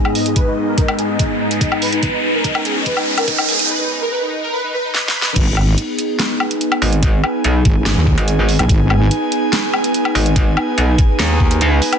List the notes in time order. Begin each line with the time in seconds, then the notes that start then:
Already playing: G#2 G#3 B3 D#4 B4 D#5 G#5, riser
0.05 G#4, low woodblock
0.15 D#5, open hi-hat
0.26 G#4, closed hi-hat
0.36 B4, kick, closed hi-hat
0.47 D#4
0.57 D#4
0.67 A#4
0.78 D#4, kick, closed hi-hat
0.88 D#4, low woodblock
0.98 G#4, closed hi-hat
1.09 D#4
1.19 D#4, kick, closed hi-hat
1.40 D#4
1.51 closed hi-hat
1.61 D#4, kick, closed hi-hat
1.72 D#4, low woodblock
1.82 B4, open hi-hat
1.93 D#4, closed hi-hat
2.03 C#4 B4, kick, closed hi-hat
2.13 D#4
2.24 D#4
2.34 A#4
2.44 D#4, kick, closed hi-hat
2.55 D#4, low woodblock
2.65 G#4, closed hi-hat
2.76 D#4
2.86 B4, kick, closed hi-hat
2.97 D#4, low woodblock
3.07 D#4
3.18 A#4, closed hi-hat, low woodblock
3.28 D#4, kick, closed hi-hat
3.38 D#4, low woodblock
3.49 G#4, open hi-hat
3.59 D#4, closed hi-hat
3.70 B4
3.80 D#4
3.90 D#4
4.01 A#4
4.11 B4
4.22 D#4
4.32 D#4
4.43 A#4
4.53 B4
4.63 D#4
4.74 B4
4.84 D#4
4.94 B4, snare
5.05 D#4, snare
5.15 B4
5.22 D#4, snare
5.36 G#1 B3 D#4 G#4, kick, closed hi-hat, crash
5.57 low woodblock
5.78 closed hi-hat
5.96 B4, closed hi-hat
6.19 snare, closed hi-hat
6.29 G#5
6.40 low woodblock
6.51 closed hi-hat
6.61 closed hi-hat
6.72 low woodblock
6.82 G#1, open hi-hat
6.93 closed hi-hat
7.03 kick, closed hi-hat
7.24 low woodblock
7.44 B1, closed hi-hat
7.65 G#1, kick, closed hi-hat
7.86 snare, closed hi-hat
7.97 D#2
8.07 kick
8.18 G#1, closed hi-hat
8.28 closed hi-hat
8.49 open hi-hat
8.59 B1, closed hi-hat, low woodblock
8.69 G#1, kick, closed hi-hat
8.90 low woodblock
9.11 closed hi-hat
9.32 closed hi-hat
9.53 snare, closed hi-hat
9.74 low woodblock
9.84 closed hi-hat
9.94 closed hi-hat
10.05 low woodblock
10.15 G#1, open hi-hat
10.26 closed hi-hat
10.36 kick, closed hi-hat
10.57 low woodblock
10.78 B1, closed hi-hat
10.98 kick, closed hi-hat
11.19 D#2, snare, closed hi-hat
11.40 kick
11.51 closed hi-hat
11.61 D2, closed hi-hat
11.82 open hi-hat
11.93 closed hi-hat, low woodblock